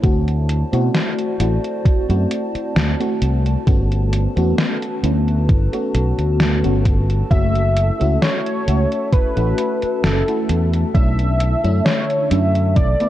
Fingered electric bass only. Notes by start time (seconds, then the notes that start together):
0.03 D2
0.73 B2
1.40 A1
1.85 muted fingered electric bass stroke
2.09 F#2
2.55 muted fingered electric bass stroke
2.76 D2
3.22 C2
3.67 G1
4.37 E2
5.03 D2
5.49 G1
5.95 B1
6.18 D2
6.64 G1
7.31 F#1
8.01 C#2
8.68 C#2
9.13 muted fingered electric bass stroke
9.37 A1
9.83 muted fingered electric bass stroke
10.04 F#1
10.49 E2
10.94 B1
11.64 F#2
12.31 F#2
12.76 B1